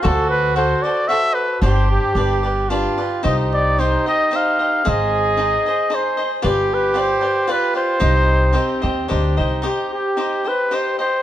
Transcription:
X:1
M:3/4
L:1/16
Q:1/4=112
K:Cm
V:1 name="Trumpet"
=A2 =B2 c2 d2 =e2 B2 | c2 G4 z6 | e2 d2 c2 e2 f4 | e8 c3 z |
G2 =B2 c4 B2 c2- | c8 z4 | G2 G4 =B2 c2 c2 |]
V:2 name="Cavaquinho"
[^F=Acd]4 [FAcd]2 [Acd]2 [FAcd]4 | [DGcd]4 [DG=Bd]2 [GBd]2 [DGBd]2 [GBd]2 | [EGce]4 [EGce]2 [Gce]2 [EGce]2 [Gce]2 | [EAce]4 [EAce]2 [Ace]2 [EAce]2 [Ace]2 |
[FG=Bd]4 [FGBd]2 [GBd]2 [FGBd]2 [GBd]2 | [EGce]4 [EGce]2 [Gce]2 [EGce]2 [Gce]2 | [EGce]4 [EGce]2 [Gce]2 [EGce]2 [Gce]2 |]
V:3 name="Trumpet"
^F8- F2 z2 | G4 G4 F4 | E12 | A8- A2 z2 |
G8 F4 | E4 C4 D2 E2 | z12 |]
V:4 name="Upright bass" clef=bass
D,,8 z4 | G,,,4 G,,,8 | C,,8 z4 | A,,,8 z4 |
G,,,8 z4 | C,,6 E,,2 D,,2 C,,2 | z12 |]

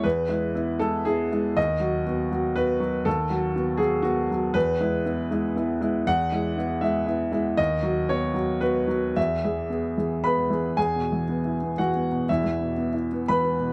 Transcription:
X:1
M:3/4
L:1/8
Q:1/4=119
K:E
V:1 name="Upright piano"
B3 A G2 | d4 B2 | A3 G F2 | B6 |
f3 e2 z | d2 c2 B2 | e4 [Bb]2 | [Gg]4 [Ff]2 |
[Ee]4 [Bb]2 |]
V:2 name="Upright piano"
E,, [G,E] [B,E] [G,E] [B,E] [G,E] | D,, [F,F] [B,F] [F,F] [B,F] [F,F] | D,, [F,F] [B,F] [F,F] B, [F,F] | E,, [G,E] [B,E] [G,E] [B,E] [G,E] |
E,, [G,E] [B,E] [G,E] [B,E] [G,E] | D,, [F,F] [B,F] [F,F] [B,F] [F,F] | E,, [E,G] [B,G] [E,G] [B,G] [E,G] | (3E,, B,, E, (3B, E B, (3E, B, B,, |
(3E,, E, B,, (3B, E B, (3E, B, B,, |]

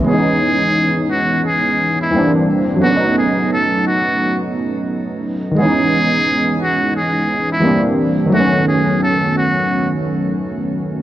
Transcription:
X:1
M:4/4
L:1/16
Q:"Swing 16ths" 1/4=87
K:C#m
V:1 name="Muted trumpet"
G6 F2 G3 E2 z3 | F2 G2 A2 F3 z6 z | G6 F2 G3 E2 z3 | F2 G2 A2 F3 z6 z |]
V:2 name="Synth keys"
[E,G,B,CD]12 [E,=G,_B,=C=D]4 | [F,A,B,C=D^D]16 | [D,E,G,B,CD]12 [E,=G,_B,=C=D]4 | [D,F,A,B,C]16 |]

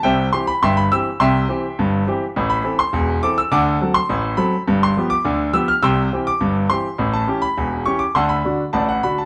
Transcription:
X:1
M:2/4
L:1/16
Q:1/4=104
K:C
V:1 name="Grand piano"
[ceg]2 c' b [egc'] b e'2 | [egc']8 | z b2 c'3 d' e' | [^fad']3 c'3 b2 |
z c'2 d'3 e' f' | [gc'e']3 d'3 c'2 | z a2 b3 ^c' d' | [^fac'] b3 [dfa] f b a |]
V:2 name="Grand piano" clef=bass
[C,,C,]2 [E,CG]2 [G,,,G,,]2 [E,CG]2 | [C,,C,]2 [E,CG]2 [G,,,G,,]2 [E,CG]2 | [A,,,A,,]2 [E,CA]2 [E,,,E,,]2 [E,CA]2 | [D,,D,]2 [^F,CA]2 [A,,,A,,]2 [F,CA]2 |
[G,,,G,,]2 [F,B,G]2 [D,,D,]2 [F,B,G]2 | [C,,C,]2 [E,CG]2 [G,,,G,,]2 [E,CG]2 | [A,,,A,,]2 [E,^CG]2 [E,,,E,,]2 [E,CG]2 | [D,,D,]2 [D,D^F]2 [A,,,A,,]2 [D,DF]2 |]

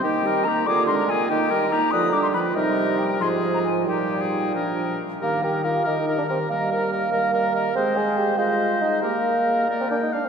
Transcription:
X:1
M:6/8
L:1/16
Q:3/8=94
K:Eb
V:1 name="Flute"
g4 b2 d'2 c' b a2 | g4 b2 e'2 d' c' =b2 | e4 g2 c'3 b a2 | g8- g2 z2 |
B2 B2 B2 B2 B2 B2 | e2 e2 e2 e2 e2 e2 | e6 e6 | e6 d4 z2 |]
V:2 name="Oboe"
G2 B2 G2 A2 B2 A2 | G2 B2 G2 =B2 G2 B2 | B6 A6 | G3 A3 B4 z2 |
B2 B2 B2 B2 B2 B2 | B2 B2 B2 B2 B2 B2 | c6 c6 | B6 B2 g2 f2 |]
V:3 name="Clarinet"
E2 G2 E2 F2 D2 F2 | E2 G2 E2 F2 D2 F2 | E6 F6 | E6 D4 z2 |
G2 G2 G2 G2 G2 G2 | B2 B2 B2 B2 B2 B2 | A6 A6 | G3 A3 B4 z2 |]
V:4 name="Bassoon"
E,6 D,6 | E,6 D,6 | C,6 A,,6 | B,,8- B,,2 z2 |
B,2 G2 F2 E3 D C2 | B,12 | C2 A2 G2 F4 E2 | B,6 z C D E D C |]
V:5 name="French horn" clef=bass
B,2 G,2 B,2 B,2 A,2 B,2 | B,2 G,2 B,2 F,2 G,2 F,2 | G,6 F,6 | G,6 F,4 z2 |
E,6 E,6 | G,6 G,6 | A,12 | B,6 B,4 z2 |]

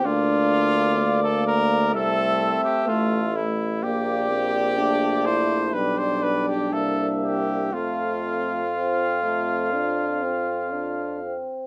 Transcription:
X:1
M:4/4
L:1/16
Q:1/4=62
K:F
V:1 name="Cornet"
d8 e6 z2 | d8 d4 e4 | f12- f2 z2 |]
V:2 name="Trumpet"
F4- F A B2 A3 G F2 E2 | G6 c2 =B c B G A2 G2 | F12- F2 z2 |]
V:3 name="French horn"
D4 B,4 C4 A,2 z2 | B,2 C2 D2 E2 D8 | C12- C2 z2 |]
V:4 name="Euphonium"
B,8 A,6 z2 | B,4 A,4 G,2 G,2 B,4 | A,4 C2 A,2 D2 C2 D2 C2 |]
V:5 name="Tuba" clef=bass
D,,8 C,,2 z2 A,,,4 | B,,,8 =B,,,4 C,,4 | F,,12- F,,2 z2 |]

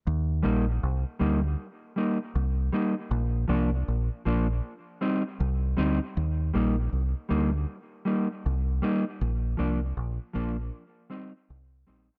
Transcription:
X:1
M:4/4
L:1/16
Q:"Swing 16ths" 1/4=79
K:Eb
V:1 name="Clean electric guitar"
z2 [G,B,E]2 z2 [G,B,E]2 z2 [G,B,E]2 z2 [G,B,E]2 | z2 [F,B,D]2 z2 [F,B,D]2 z2 [G,CE]2 z2 [G,CE]2 | z2 [G,B,E]2 z2 [G,B,E]2 z2 [G,B,E]2 z2 [G,B,E]2 | z2 [F,B,D]2 z2 [F,B,D]2 z2 [G,CE]2 z2 [G,CE]2 |]
V:2 name="Fingered electric bass" clef=bass
E,,2 B,,,2 C,, z D,,2 z4 C,,2 z2 | B,,,2 C,,2 B,,, z B,,,2 z4 C,,2 D,, z | E,,2 B,,,2 C,, z D,,2 z4 C,,2 z2 | B,,,2 C,,2 B,,, z B,,,2 z4 C,,2 B,,, z |]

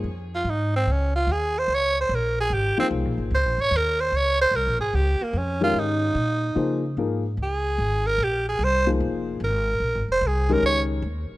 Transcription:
X:1
M:4/4
L:1/8
Q:"Swing" 1/4=148
K:Bbdor
V:1 name="Tenor saxophone"
z F E C D F A c | d c B A G C z2 | c d B c d c B A | G B, D F E4- |
E2 z2 A3 B | G A c z3 B2- | B c A B d z3 |]
V:2 name="Upright piano"
z8 | z4 z [F,B,EAc]3 | z8 | z3 [E,A,DGB]3 z2 |
[F,B,EAc] z [F,B,EAB] z4 z | z3 [F,B,EAc]3 z2 | z3 [E,A,DGB]3 z2 |]
V:3 name="Upright bass" clef=bass
F,,2 A,,2 D,,2 E,,2 | D,,2 B,,,2 A,,, z (3C,, B,,, A,,, | (3D,, B,,, A,,, E,,2 D,,2 (3C,, B,,, A,,, | D,, z F,,2 A,,2 B,,2 |
D,2 A,,2 D,,2 A,,,2 | B,,,2 C,,2 F,,,2 A,,,2 | (3B,,, A,,, F,,, C,,2 D,,2 E,, z |]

